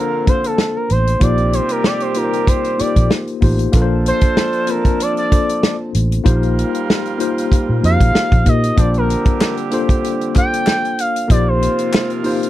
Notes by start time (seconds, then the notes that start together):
Already playing: D3 F3 A#3 C4 D4 F4 A4 A#4 C5
0.26 A#3 D4 F4 A4 C5, kick, closed hi-hat
0.44 A4, closed hi-hat
0.58 snare
0.72 A4
0.77 A#4
0.90 A1 C5, closed hi-hat
1.07 closed hi-hat
1.19 A#1 C3 G3 A#3 D#4 F4 G4 C5 D5, kick, closed hi-hat
1.38 closed hi-hat
1.53 C5, closed hi-hat
1.69 A#4, closed hi-hat
1.84 D5, snare
2.00 C5, closed hi-hat
2.14 A#3 D#4 F4 G4 A#4, closed hi-hat
2.24 C5
2.33 closed hi-hat
2.47 C5, kick, closed hi-hat
2.64 closed hi-hat
2.78 A#3 D#4 F4 G4 A#4 D5, muted fingered electric bass stroke, closed hi-hat
2.87 C5
2.96 A#1, kick, closed hi-hat
3.11 snare
3.27 closed hi-hat
3.41 A1 A#3 D#4 F4 G4 C5, kick, open hi-hat
3.59 closed hi-hat
3.72 A#1 F3 A#3 D4 F4 A4 B4 A5, kick, closed hi-hat
3.82 C5
4.06 C5, closed hi-hat
4.21 kick, closed hi-hat
4.37 snare
4.53 closed hi-hat
4.67 A#3 C4 F4 A#4 C5 A5, closed hi-hat
4.74 D4
4.85 kick, closed hi-hat
5.00 D5, closed hi-hat
5.17 D5, closed hi-hat
5.30 A#3 D4 F4 A4 C5, kick, closed hi-hat
5.49 closed hi-hat
5.63 snare
5.95 A1, closed hi-hat
6.12 closed hi-hat
6.24 A#1 G3 A#3 D#4 F4 G4 A#4 C5, kick, closed hi-hat
6.43 closed hi-hat
6.59 closed hi-hat
6.75 closed hi-hat
6.90 snare
7.06 closed hi-hat
7.18 A#3 D#4 F4 G4 C5, closed hi-hat
7.38 closed hi-hat
7.52 kick, closed hi-hat
7.69 A#2
7.81 F2 A#3 D#4 F4 F#4 C5 F5, closed hi-hat
7.90 G4
8.01 A#1, kick, closed hi-hat
8.15 muted fingered electric bass stroke, snare
8.32 A#1, kick, closed hi-hat
8.45 A#2 A#3 D#4 F4 G4 A#4 D#5, kick, closed hi-hat
8.64 closed hi-hat
8.76 A#1 D3 G3 A#3 C4 D4 F4 G4 C5 D5 A5, kick, closed hi-hat
8.94 A#4, closed hi-hat
9.10 closed hi-hat
9.25 kick, closed hi-hat
9.41 snare, clap
9.57 closed hi-hat
9.71 A#3 D4 F4 A4 C5, closed hi-hat
9.89 kick, closed hi-hat
10.04 closed hi-hat
10.21 closed hi-hat
10.34 A#3 D4 F4 A4 C5 G5, kick, clap, closed hi-hat
10.54 closed hi-hat
10.66 snare, clap
10.85 closed hi-hat
10.99 F5, closed hi-hat
11.16 closed hi-hat
11.28 A#1 C3 F3 A#3 D#4 F4 G4 C5 D5, kick, closed hi-hat
11.48 C5
11.62 closed hi-hat
11.79 closed hi-hat
11.93 snare, clap
12.10 closed hi-hat
12.23 A#3 D#4 F4 G4 C5, open hi-hat
12.43 closed hi-hat